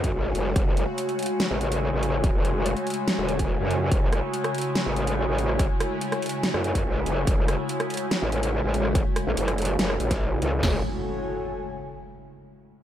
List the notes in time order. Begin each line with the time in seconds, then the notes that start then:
Already playing: F#2 C#3 G#3 A3 F#4 C#5 G#5, downlifter
0.04 kick, closed hi-hat
0.14 A1
0.35 F#1, closed hi-hat
0.56 F#1, kick, closed hi-hat
0.77 closed hi-hat
0.98 closed hi-hat
1.09 closed hi-hat
1.19 closed hi-hat
1.23 closed hi-hat
1.26 closed hi-hat
1.40 snare, closed hi-hat
1.51 A1
1.61 closed hi-hat
1.72 closed hi-hat
1.93 A1
2.03 closed hi-hat
2.24 kick, closed hi-hat
2.34 F#1
2.45 closed hi-hat
2.66 closed hi-hat
2.77 closed hi-hat
2.87 closed hi-hat
2.90 closed hi-hat
2.94 closed hi-hat
3.08 snare, closed hi-hat
3.18 E1
3.29 closed hi-hat
3.39 kick, closed hi-hat
3.60 F#2
3.71 closed hi-hat
3.91 F#1 E4, kick, closed hi-hat
4.13 cross-stick, closed hi-hat
4.34 closed hi-hat
4.44 cross-stick, closed hi-hat
4.55 closed hi-hat
4.58 closed hi-hat
4.61 closed hi-hat
4.75 snare, closed hi-hat
4.86 A1
4.96 closed hi-hat
5.07 closed hi-hat
5.28 A1
5.38 closed hi-hat
5.49 cross-stick
5.59 kick, closed hi-hat
5.80 cross-stick, closed hi-hat
6.01 closed hi-hat
6.12 cross-stick, closed hi-hat
6.22 closed hi-hat
6.26 closed hi-hat
6.29 closed hi-hat
6.43 snare, closed hi-hat
6.54 F#2, cross-stick
6.64 closed hi-hat
6.75 kick, closed hi-hat
6.85 A1
7.06 F#1, closed hi-hat
7.27 F#1, kick, closed hi-hat
7.48 cross-stick, closed hi-hat
7.69 closed hi-hat
7.80 cross-stick, closed hi-hat
7.90 closed hi-hat
7.94 closed hi-hat
7.97 closed hi-hat
8.11 snare, closed hi-hat
8.22 A1
8.32 closed hi-hat
8.43 closed hi-hat
8.64 A1
8.74 closed hi-hat
8.85 cross-stick
8.95 kick, closed hi-hat
9.16 cross-stick, closed hi-hat
9.27 A1
9.37 F#1, closed hi-hat
9.48 cross-stick, closed hi-hat
9.58 closed hi-hat
9.62 closed hi-hat
9.65 closed hi-hat
9.79 F#1, snare, closed hi-hat
9.90 cross-stick
10.00 A1, closed hi-hat
10.11 kick, snare, closed hi-hat
10.42 C#2, closed hi-hat
10.63 F#1 F#4, snare, floor tom, crash, impact
10.70 A4
10.76 C#5
10.82 G#5